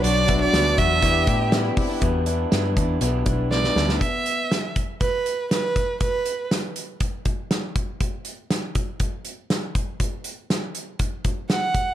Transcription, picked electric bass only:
\new Staff \with { instrumentName = "Picked electric bass" } { \clef bass \time 4/4 \key e \minor \tempo 4 = 120 b,,4 d,8 e,8 e,8 a,4 r8 | e,4 g,8 e,8 b,,8 b,,4 d,8 | r1 | r1 |
r1 | r1 | }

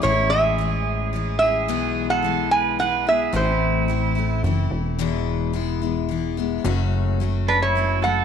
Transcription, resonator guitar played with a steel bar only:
\new Staff \with { instrumentName = "Resonator guitar played with a steel bar" } { \time 3/4 \key e \major \tempo 4 = 109 cis''8 e''2 e''8~ | e''8. fis''8. gis''8 fis''8 e''8 | c''2 r4 | r2. |
r4. b'16 cis''8. fis''8 | }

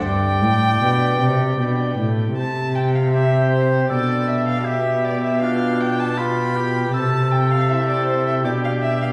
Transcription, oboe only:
\new Staff \with { instrumentName = "Oboe" } { \time 3/4 \key g \major \tempo 4 = 79 d''2~ d''8 r8 | \key c \major r4 g'4 a'4 | g'4 d'4 f'8 g'8 | a'2 g'4 | }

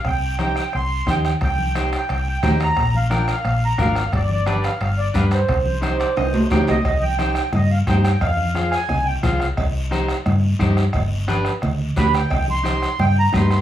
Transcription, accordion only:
\new Staff \with { instrumentName = "Accordion" } { \time 4/4 \key c \minor \tempo 4 = 176 g''4 g''4 c'''4 g''8 g''8 | g''4. g''4 g''4 bes''8~ | bes''8 f''8 g''8 f''4 bes''8 f''4 | d''8 d''4 f''8 f''8 d''8 f''8 c''8~ |
c''2. g''8 ees''8~ | ees''8 g''4. ees''8 f''8 g''8 g''8 | f''4. aes''4 g''8 f''8. r16 | r1 |
r2. b''8 g''8~ | g''8 c'''4. g''8 bes''8 c'''8 c'''8 | }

